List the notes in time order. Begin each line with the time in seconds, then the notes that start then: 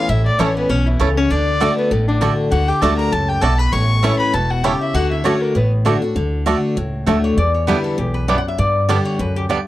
Already playing: F5
0.08 A1 A2 E4 E5
0.26 D4 D5
0.39 A1 E3 A3 C#4 E4 C#5 A5
0.57 B3 B4
0.69 B1 B2 C#4 C#5
0.86 E3 E4
1.00 C#2 C#3 A3 C#4 E4 A4 C#5 A5
1.17 C#4 C#5
1.30 D2 D3 D4 D5
1.60 D3 A3 D4 F#4 D5 A5
1.77 B3 B4
1.91 A1 A2 A3 A4
2.07 D3 D4
2.21 D3 A3 D4 F#4 D5 A5
2.51 D2 D3 F#4 F#5
2.68 G4 G5
2.81 D2 D3 A3 D4 F#4 A4 D5 A5
2.98 A#4 A#5
3.12 C#2 F#2 A4 A5
3.28 G4 G5
3.41 B1 B2 A3 D4 F#4 A4 D5 A5
3.58 B4 B5
3.72 A1 A2 C#5 C#6
4.03 E3 A3 C#4 E4 C#5 A5
4.19 B4 B5
4.33 E1 B2 A4 A5
4.50 F#4 F#5
4.63 C#3 A3 C#4 E4 G4 C#5 G5 A5
4.81 E4 E5
4.94 D2 D3 F#4 F#5
5.11 E4 E5
5.24 D3 A3 C#4 D4 F#4 C#5 D5 A5
5.41 A#3 A#4
5.55 A1 A2 B3 B4
5.85 D3 A3 D4 F#4 D5 A5
6.02 D4 F#4
6.16 D2 D3
6.46 D3 A3 D4 F#4 D5 A5
6.76 C#2 A2
7.06 D2 D3 A3 D4 F#4 D5 E5 A5
7.24 C#5
7.37 E2 D5
7.54 C#5
7.67 D3 G3 B3 D4 E4 B4 D5 G5
7.84 A4
7.98 B1 E2 G4
8.14 B4
8.28 F#2 G3 B3 D4 E4 D5 G5
8.38 F#5
8.48 E5
8.58 G2 D5
8.89 D3 G3 B3 D4 G4 D5 A5
9.05 C#5
9.19 D2 F#2 B4
9.36 G4
9.49 G2 G3 B3 D4 G4 D5 A5